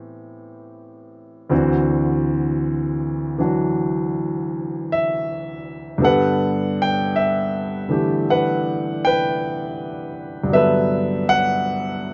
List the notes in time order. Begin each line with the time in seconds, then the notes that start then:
Already playing: A2 E3 B3 C4 G4
1.49 D2 D3 E3 C4 F#4
3.38 E3 F#3 D4 F#4
4.92 E5
5.98 G2 D3 G3 B3
6.03 A4 B4 F#5
6.82 G5
7.16 E5
7.89 D3 E3 A3 G4
8.30 B4 F#5
9.05 B4 G5
10.44 G2 D3
10.50 F#3 B3 E5
10.55 A4 B4
11.29 F#5